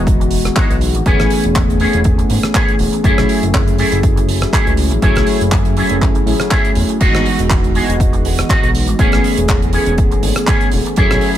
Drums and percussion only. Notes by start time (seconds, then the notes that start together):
0.07 kick, closed hi-hat
0.21 closed hi-hat
0.31 open hi-hat
0.45 cross-stick, closed hi-hat
0.56 kick, clap, closed hi-hat
0.71 closed hi-hat
0.81 open hi-hat
0.95 closed hi-hat
1.06 kick, closed hi-hat
1.20 cross-stick, closed hi-hat
1.30 open hi-hat
1.44 closed hi-hat
1.55 kick, clap, closed hi-hat
1.70 closed hi-hat
1.80 open hi-hat
1.93 closed hi-hat
2.04 kick, closed hi-hat
2.19 closed hi-hat
2.30 open hi-hat
2.43 cross-stick, closed hi-hat
2.55 kick, clap, closed hi-hat
2.68 closed hi-hat
2.79 open hi-hat
2.93 closed hi-hat
3.04 kick, closed hi-hat
3.18 cross-stick, closed hi-hat
3.29 open hi-hat
3.43 closed hi-hat
3.54 kick, clap, closed hi-hat
3.68 closed hi-hat
3.78 open hi-hat
3.92 closed hi-hat
4.03 kick, closed hi-hat
4.17 closed hi-hat
4.29 open hi-hat
4.42 cross-stick, closed hi-hat
4.53 kick, clap, closed hi-hat
4.67 closed hi-hat
4.77 open hi-hat
4.91 closed hi-hat
5.02 kick, closed hi-hat
5.16 cross-stick, closed hi-hat
5.27 open hi-hat
5.41 closed hi-hat
5.51 kick, clap, closed hi-hat
5.65 closed hi-hat
5.77 open hi-hat
5.90 closed hi-hat
6.02 kick, clap, closed hi-hat
6.15 closed hi-hat
6.27 open hi-hat
6.40 cross-stick, closed hi-hat
6.51 kick, clap, closed hi-hat
6.65 closed hi-hat
6.75 open hi-hat
6.89 closed hi-hat
7.00 kick, closed hi-hat, crash
7.15 cross-stick, closed hi-hat
7.26 open hi-hat
7.39 closed hi-hat
7.50 kick, clap, closed hi-hat
7.64 closed hi-hat
7.75 open hi-hat
7.90 closed hi-hat
8.00 kick, closed hi-hat
8.13 closed hi-hat
8.25 open hi-hat
8.39 cross-stick, closed hi-hat
8.49 kick, clap, closed hi-hat
8.63 closed hi-hat
8.75 open hi-hat
8.88 closed hi-hat
8.99 kick, closed hi-hat
9.12 cross-stick, closed hi-hat
9.24 open hi-hat
9.37 closed hi-hat
9.48 kick, clap, closed hi-hat
9.62 closed hi-hat
9.73 open hi-hat
9.86 closed hi-hat
9.98 kick, closed hi-hat
10.12 closed hi-hat
10.23 open hi-hat
10.36 cross-stick, closed hi-hat
10.47 kick, clap, closed hi-hat
10.61 closed hi-hat
10.71 open hi-hat
10.86 closed hi-hat
10.96 kick, closed hi-hat
11.11 cross-stick, closed hi-hat
11.21 open hi-hat